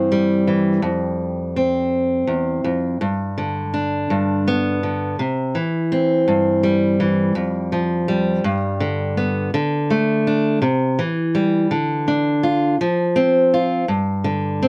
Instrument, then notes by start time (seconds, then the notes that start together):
steel-string acoustic guitar
Already playing: G2 E3 C4
0.12 G3
0.47 E3
0.82 F2
1.56 C4
2.27 E2
2.64 F2
3.01 G2
3.38 D3
3.74 D4
4.10 G2
4.48 B3
4.83 D3
5.19 C3
5.55 E3
5.92 C4
6.28 G2
6.63 G3
7.00 E3
7.35 F2
7.72 F3
8.08 G3
8.44 G2
8.80 D3
9.17 B3
9.54 D3
9.90 A3
10.27 D4
10.62 C3
10.99 E3
11.35 G3
11.71 D3
12.08 D4
12.43 F4
12.81 F3
13.16 C4
13.54 F4
13.88 G2
14.24 D3
14.63 C4